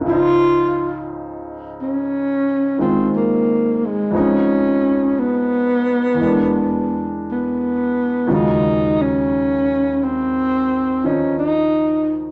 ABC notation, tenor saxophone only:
X:1
M:4/4
L:1/16
Q:"Swing" 1/4=59
K:Db
V:1 name="Tenor saxophone"
F4 z2 D4 C2 B,2 A,2 | D4 _C6- C z =B,4 | E2 D4 C4 D2 E3 z |]